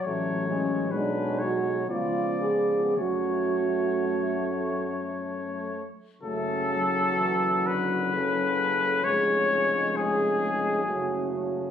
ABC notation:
X:1
M:3/4
L:1/8
Q:1/4=64
K:F#m
V:1 name="Cornet"
c2 B c d2 | c4- c z | A3 B3 | c2 G3 z |]
V:2 name="French horn section"
z C D F ^E G | F4 z2 | F4 A2 | G G3 F2 |]
V:3 name="Trombone section" clef=bass
F,2 G,2 B,2 | A,4- A, z | A, F,3 F,2 | G,4 A,2 |]
V:4 name="Trombone" clef=bass
A, G, F,2 ^E,2 | A,4- A, z | C,2 E, D, C,2- | C,4 C, C, |]
V:5 name="Tuba" clef=bass
A,,,2 B,,,2 C,,2 | F,,4- F,, z | F,,,6 | ^E,,,4 F,,,2 |]